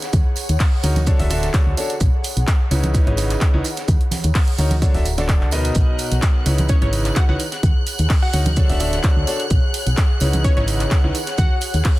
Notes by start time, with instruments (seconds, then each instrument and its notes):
Already playing: ambient pad G#4 C#5 F#5
0.02 snare, closed hi-hat, tambourine
0.13 fm bass D#2, kick, closed hi-hat, tambourine, shaker
0.36 open hi-hat, tambourine, shaker
0.49 fm bass D#2, closed hi-hat, tambourine
0.60 kick, snare, clap, closed hi-hat, open hi-hat, tambourine
0.83 fm bass D2, grand piano D#4 F#4 A#4 C#5, open hi-hat, tambourine, shaker
0.96 closed hi-hat, tambourine, high conga
1.06 grand piano D3 D4 F#4 A4 C#5, kick, closed hi-hat, tambourine, shaker
1.18 fm bass D1, grand piano D3 D4 F#4 A4 E5, snare, open hi-hat
1.30 grand piano D3 D4 F#4 A4 E5, open hi-hat, tambourine, shaker
1.43 snare, closed hi-hat, tambourine
1.54 grand piano D3 D4 F#4 A4 C#5, kick, snare, clap, closed hi-hat, tambourine, shaker
1.66 fm bass D2
1.77 grand piano D4 F#4 A4 C#5, open hi-hat, tambourine, shaker
1.90 closed hi-hat, tambourine
2.00 fm bass B1, kick, closed hi-hat, shaker
2.24 open hi-hat, tambourine, shaker
2.36 fm bass B1, closed hi-hat, tambourine
2.47 kick, snare, clap, closed hi-hat, tambourine, shaker
2.71 fm bass C#2, grand piano C#3 D#4 E4 B4 C#5, open hi-hat, tambourine, shaker
2.83 closed hi-hat, tambourine, high conga
2.94 grand piano C#3 D#4 E4 B4 C#5, kick, closed hi-hat, tambourine, shaker
3.07 fm bass G#1, grand piano C#3 D#4 E4 B4 C#5, closed hi-hat
3.17 snare, open hi-hat, tambourine, shaker
3.30 clap, closed hi-hat, tambourine
3.41 kick, clap, closed hi-hat, tambourine, shaker
3.54 fm bass C#2, grand piano D#3 D#4 E4 B4 C#5
3.64 open hi-hat, tambourine, shaker
3.77 snare, closed hi-hat, tambourine
3.88 fm bass D#2, kick, closed hi-hat, tambourine, shaker
4.01 closed hi-hat
4.11 snare, open hi-hat, tambourine, high conga, shaker
4.24 fm bass D#2, closed hi-hat, tambourine
4.35 kick, snare, clap, closed hi-hat, open hi-hat, tambourine
4.48 closed hi-hat
4.58 fm bass D2, grand piano D#4 F#4 A#4 C#5, open hi-hat, tambourine, shaker
4.71 closed hi-hat, tambourine, high conga
4.82 grand piano D3 D4 F#4 A4 C#5, kick, closed hi-hat, tambourine, shaker
4.94 fm bass D1, grand piano D3 D4 F#4 A4 E5, snare, open hi-hat
5.06 open hi-hat, tambourine, shaker
5.18 grand piano D3 D4 F#4 A4 D5, snare, closed hi-hat, tambourine
5.29 grand piano D3, kick, clap, closed hi-hat, tambourine, shaker
5.41 fm bass D2, clap
5.51 grand piano B2 D#4 A#4 B4 D#5, open hi-hat, tambourine, shaker
5.65 closed hi-hat, tambourine
5.75 fm bass B1, violin section F#6, kick, closed hi-hat, tambourine, shaker
5.99 open hi-hat, tambourine, shaker
6.12 fm bass B1, closed hi-hat, tambourine
6.22 kick, snare, clap, closed hi-hat, tambourine, shaker
6.46 fm bass C#2, grand piano C#3 D#4 E4 B4 C#5, ambient pad G#4, open hi-hat, tambourine, shaker
6.58 closed hi-hat, tambourine, high conga
6.69 grand piano C#3 D#4 E4 B4 C#5, digital synth lead C#5, ambient pad C#5, kick, closed hi-hat, tambourine, shaker
6.82 fm bass G#1, grand piano C#3 D#4 E4 B4 C#5, digital synth lead C#5, closed hi-hat
6.86 ambient pad F#5
6.93 open hi-hat, tambourine, shaker
7.05 clap, closed hi-hat, tambourine
7.16 digital synth lead F#5, kick, snare, clap, closed hi-hat, shaker
7.29 fm bass C#2, grand piano D#3 D#4 E4 B4 C#5, digital synth lead F#5
7.39 open hi-hat, tambourine, shaker
7.52 snare, closed hi-hat, tambourine
7.63 fm bass D#2, kick, closed hi-hat, tambourine, shaker
7.87 open hi-hat, tambourine, shaker
7.98 fm bass D#2, closed hi-hat, tambourine
8.10 kick, snare, clap, closed hi-hat, open hi-hat, tambourine
8.22 digital synth lead F#5
8.33 fm bass D2, grand piano D#4 F#4 A#4 C#5, digital synth lead F#5, open hi-hat, tambourine, shaker
8.46 closed hi-hat, tambourine, high conga
8.56 grand piano D3 D4 F#4 A4 C#5, kick, closed hi-hat, tambourine, shaker
8.70 fm bass D1, grand piano D3 D4 F#4 A4 E5, snare, open hi-hat
8.80 grand piano D3 D4 F#4 A4 E5, open hi-hat, tambourine, shaker
8.93 snare, closed hi-hat, tambourine
9.03 grand piano D3 D4 F#4 A4 C#5, kick, snare, clap, closed hi-hat, tambourine, shaker
9.16 fm bass D2
9.27 grand piano D4 F#4 A4 C#5, open hi-hat, tambourine, shaker
9.39 closed hi-hat, tambourine
9.50 fm bass B1, kick, closed hi-hat, tambourine, shaker
9.74 open hi-hat, tambourine, shaker
9.86 fm bass B1, closed hi-hat, tambourine
9.97 kick, snare, clap, closed hi-hat, tambourine, shaker
10.20 fm bass C#2, grand piano C#3 D#4 E4 B4 C#5, open hi-hat, tambourine, shaker
10.33 closed hi-hat, tambourine, high conga
10.44 grand piano C#3 D#4 E4 B4 C#5, digital synth lead C#5, kick, closed hi-hat, tambourine, shaker
10.57 fm bass G#1, grand piano C#3 D#4 E4 B4 C#5, digital synth lead C#5, closed hi-hat
10.68 open hi-hat, tambourine, shaker
10.80 clap, closed hi-hat, tambourine
10.91 kick, snare, clap, closed hi-hat, tambourine, shaker
11.04 fm bass C#2, grand piano D#3 D#4 E4 B4 C#5
11.15 open hi-hat, tambourine, shaker
11.26 snare, closed hi-hat, tambourine
11.38 fm bass D#2, digital synth lead F#5, kick, closed hi-hat, tambourine, shaker
11.61 open hi-hat, tambourine, shaker
11.74 fm bass D#2, closed hi-hat, tambourine
11.85 kick, snare, clap, closed hi-hat, open hi-hat